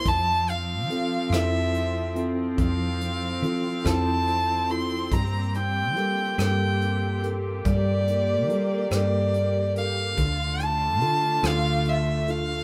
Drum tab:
HH |xxxxxx|xxxxxx|xxxxxx|xxxxxx|
SD |---r--|---r--|---r--|---r--|
BD |o-----|o--o--|o-----|o-----|

HH |xxxxxx|
SD |---r--|
BD |o-----|